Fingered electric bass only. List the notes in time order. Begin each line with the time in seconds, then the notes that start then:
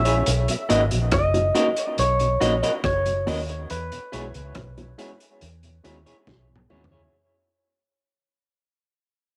Already playing: A#1
0.27 B1
0.70 G#1
0.92 A#1
1.13 F#1
1.99 B1
2.42 A#1
2.85 F#1
3.28 D#2
3.71 E2
4.14 B1
4.35 C#2
4.56 B1
5.42 E2
5.85 D#2
6.28 B1
6.71 D#2